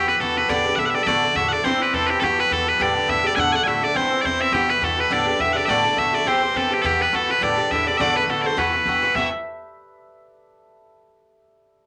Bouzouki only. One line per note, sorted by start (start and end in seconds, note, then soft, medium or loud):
0.07 0.19 E3 medium
0.07 0.20 B3 medium
0.07 0.20 F#4 medium
0.20 0.36 G2 medium
0.20 0.36 E3 medium
0.20 0.36 B3 medium
0.20 0.34 F#4 medium
0.36 0.49 E3 medium
0.36 0.49 B3 soft
0.36 0.49 F#4 medium
0.49 0.65 A2 medium
0.49 0.65 D3 loud
0.49 0.65 B3 loud
0.49 0.63 G4 medium
0.65 0.77 D3 soft
0.65 0.78 B3 soft
0.65 0.78 G4 medium
0.77 0.93 A2 medium
0.77 0.94 D3 medium
0.77 0.94 B3 medium
0.77 0.92 G4 medium
0.94 1.06 D3 soft
0.94 1.07 B3 soft
0.94 1.06 G4 medium
1.07 1.22 A2 medium
1.07 1.23 D3 medium
1.07 1.22 A3 medium
1.07 1.21 F#4 medium
1.22 1.35 D3 medium
1.22 1.35 A3 medium
1.22 1.35 F#4 medium
1.35 1.51 A2 medium
1.35 1.51 D3 medium
1.35 1.51 A3 medium
1.35 1.50 F#4 medium
1.51 1.64 D3 soft
1.51 1.65 A3 soft
1.51 1.64 F#4 medium
1.64 1.80 G2 medium
1.64 1.80 E3 medium
1.64 1.80 C4 loud
1.64 1.78 E4 loud
1.80 1.93 E3 soft
1.80 1.93 C4 soft
1.80 1.93 E4 medium
1.93 2.09 G2 medium
1.93 2.09 E3 medium
1.93 2.08 C4 medium
1.93 2.07 E4 medium
2.08 2.21 E3 soft
2.08 2.22 C4 medium
2.08 2.22 E4 medium
2.22 2.38 G2 medium
2.22 2.38 E3 medium
2.22 2.37 B3 medium
2.22 2.36 F#4 medium
2.38 2.50 E3 soft
2.38 2.50 B3 medium
2.38 2.51 F#4 medium
2.50 2.66 G2 medium
2.50 2.67 E3 medium
2.50 2.66 B3 medium
2.50 2.65 F#4 medium
2.66 2.79 E3 soft
2.66 2.79 B3 medium
2.66 2.79 F#4 medium
2.79 2.95 A2 medium
2.79 2.96 D3 medium
2.79 2.95 B3 medium
2.79 2.94 G4 loud
2.95 3.07 D3 soft
2.95 3.08 B3 soft
2.95 3.08 G4 soft
3.08 3.24 A2 medium
3.08 3.24 D3 medium
3.08 3.24 B3 medium
3.08 3.23 G4 medium
3.24 3.36 D3 soft
3.24 3.37 B3 medium
3.24 3.37 G4 medium
3.36 3.53 A2 medium
3.36 3.53 D3 medium
3.36 3.53 A3 medium
3.36 3.52 F#4 medium
3.53 3.65 D3 soft
3.53 3.66 A3 medium
3.53 3.66 F#4 medium
3.65 3.82 A2 medium
3.65 3.82 D3 medium
3.65 3.82 A3 medium
3.65 3.80 F#4 medium
3.81 3.94 D3 medium
3.81 3.95 A3 medium
3.81 3.95 F#4 medium
3.94 4.11 G2 medium
3.94 4.11 E3 medium
3.94 4.10 C4 medium
3.94 4.09 E4 medium
4.10 4.23 E3 soft
4.10 4.24 C4 soft
4.10 4.23 E4 medium
4.23 4.39 G2 medium
4.23 4.40 E3 medium
4.23 4.39 C4 medium
4.23 4.38 E4 medium
4.39 4.52 E3 soft
4.39 4.53 C4 soft
4.39 4.52 E4 soft
4.53 4.69 G2 medium
4.53 4.69 E3 medium
4.53 4.68 B3 medium
4.53 4.67 F#4 medium
4.68 4.81 E3 soft
4.68 4.81 B3 soft
4.68 4.81 F#4 medium
4.81 4.97 G2 medium
4.81 4.98 E3 medium
4.81 4.97 B3 medium
4.81 4.96 F#4 medium
4.97 5.10 E3 medium
4.97 5.10 B3 soft
4.97 5.10 F#4 medium
5.10 5.26 A2 medium
5.10 5.27 D3 medium
5.10 5.26 B3 medium
5.10 5.25 G4 medium
5.26 5.38 D3 soft
5.26 5.39 B3 soft
5.26 5.39 G4 soft
5.39 5.55 A2 medium
5.39 5.56 D3 medium
5.39 5.55 B3 medium
5.39 5.54 G4 medium
5.55 5.68 D3 soft
5.55 5.69 B3 soft
5.55 5.68 G4 medium
5.68 5.84 A2 medium
5.68 5.85 D3 medium
5.68 5.84 A3 medium
5.68 5.83 F#4 medium
5.84 5.96 D3 soft
5.84 5.97 A3 medium
5.84 5.97 F#4 medium
5.97 6.13 A2 medium
5.97 6.13 D3 medium
5.97 6.13 A3 medium
5.97 6.12 F#4 medium
6.13 6.26 D3 soft
6.13 6.26 A3 medium
6.13 6.26 F#4 medium
6.26 6.42 G2 medium
6.26 6.42 E3 medium
6.26 6.41 C4 medium
6.26 6.40 G4 medium
6.41 6.54 E3 soft
6.41 6.55 C4 medium
6.41 6.54 G4 medium
6.54 6.71 G2 medium
6.54 6.71 E3 medium
6.54 6.70 C4 medium
6.54 6.69 G4 medium
6.71 6.82 E3 soft
6.71 6.84 C4 soft
6.71 6.84 G4 medium
6.83 7.00 G2 medium
6.83 7.00 E3 medium
6.83 6.99 B3 loud
6.83 6.98 F#4 loud
6.99 7.12 E3 soft
6.99 7.12 B3 medium
6.99 7.13 F#4 medium
7.12 7.28 G2 medium
7.12 7.29 E3 medium
7.12 7.29 B3 medium
7.12 7.27 F#4 medium
7.29 7.42 E3 soft
7.29 7.41 B3 soft
7.29 7.42 F#4 medium
7.41 7.58 A2 medium
7.41 7.58 D3 medium
7.41 7.57 B3 medium
7.41 7.56 G4 loud
7.57 7.70 D3 soft
7.57 7.71 B3 soft
7.57 7.70 G4 medium
7.70 7.87 A2 medium
7.70 7.87 D3 medium
7.70 7.87 B3 medium
7.70 7.85 G4 medium
7.86 7.99 D3 soft
7.86 8.00 B3 soft
7.86 7.99 G4 medium
8.00 8.16 A2 medium
8.00 8.16 D3 medium
8.00 8.15 A3 medium
8.00 8.14 F#4 medium
8.15 8.27 D3 soft
8.15 8.28 A3 soft
8.15 8.28 F#4 medium
8.28 8.44 A2 medium
8.28 8.45 D3 medium
8.28 8.44 A3 medium
8.28 8.43 F#4 medium
8.44 8.57 D3 soft
8.44 8.57 A3 medium
8.44 8.57 F#4 medium
8.57 8.73 G2 medium
8.57 8.73 E3 loud
8.57 8.74 B3 medium
8.57 8.72 F#4 medium
8.73 8.86 E3 soft
8.73 8.87 B3 soft
8.73 8.86 F#4 soft
8.86 9.02 G2 medium
8.86 9.03 E3 medium
8.86 9.02 B3 medium
8.86 9.01 F#4 medium
9.02 9.15 E3 soft
9.02 9.16 B3 medium
9.02 9.15 F#4 medium
9.15 9.28 G2 medium
9.15 9.29 E3 medium
9.15 9.29 B3 medium
9.15 9.29 F#4 medium